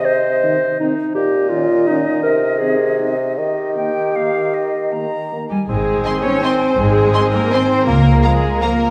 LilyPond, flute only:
\new Staff \with { instrumentName = "Flute" } { \time 3/4 \key aes \major \tempo 4 = 161 ees''2~ ees''16 r8. | ees''2.~ | ees''2. | ees''4 g''4 f''4 |
ees''4 bes''4. aes''8 | aes''2.~ | aes''2. | bes''2. | }